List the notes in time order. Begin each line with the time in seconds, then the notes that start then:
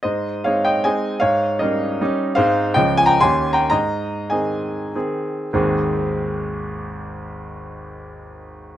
0.03 G#2 C5 D#5
0.44 G#3 C4 D#4 C#5 F5
0.65 D#5 G5
0.84 G#3 C4 D#4 D#5 G#5
1.20 G#2 C#5 F5
1.59 G3 C#4 D#4 A#4 D#5
2.01 G3 C#4 D#4
2.35 G#2 G#3 C4 D#4 C5 F5
2.74 C#2 F3 C#4 F4 D#5 G5
2.97 G#5
3.06 G5 A#5
3.21 D#2 D#3 C#4 G4 G#5 C6
3.53 G5 A#5
3.70 G#2 D#5 A#5
4.30 D#3 C4 G#4 D#5 G#5
4.95 D#3 C4 G#4
5.53 G#1 D#2 G#3 C4 D#4 G#4